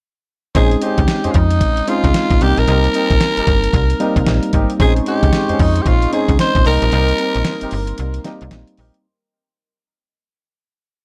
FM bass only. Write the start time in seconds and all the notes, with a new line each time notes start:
0.55 A#1
0.98 C#2
1.25 F2
1.35 F2
1.61 A#1
2.04 C#2
2.31 A#1
2.41 C2
2.58 A#1
2.68 C2
3.11 A#1
3.37 G1
3.47 G1
3.74 C2
4.16 C2
4.28 A#1
4.54 G#1
4.80 A#1
5.23 C#2
5.50 F2
5.60 F2
5.86 A#1
6.29 C#2
6.55 A#1
6.66 C2
6.82 A#1
6.93 C2
7.36 A#1
7.62 G1
7.72 G1
7.99 C2
8.42 C2
8.52 A#1
8.79 A#1